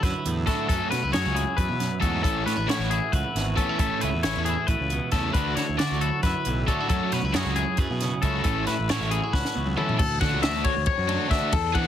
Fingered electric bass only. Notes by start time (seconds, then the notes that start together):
0.03 F#2
0.25 E2
0.70 F#2
0.92 B2
1.04 C#2
1.15 F#2
1.26 C#2
1.58 F#2
1.69 B2
2.02 E2
2.24 A1
2.46 A2
2.57 A1
2.68 A2
2.79 A1
3.13 C#2
3.35 G#1
3.79 A1
4.03 C#2
4.14 E2
4.24 A1
4.36 E2
4.68 A1
4.79 C#2
5.12 E2
5.34 D2
5.57 D3
5.69 D2
5.79 D3
5.91 D2
6.24 F#2
6.46 B1
6.90 F#2
7.12 B2
7.23 C#2
7.33 F#2
7.45 C#2
7.78 F#2
7.90 B2
8.23 C#2
8.45 A1
8.67 A2
8.79 A1
8.90 A2
9.01 A1
9.33 C#2
9.56 C#2
10.00 D2
10.21 D3
10.32 C#2
10.44 D2
10.76 D2
10.98 F#2
11.53 E2
11.75 E3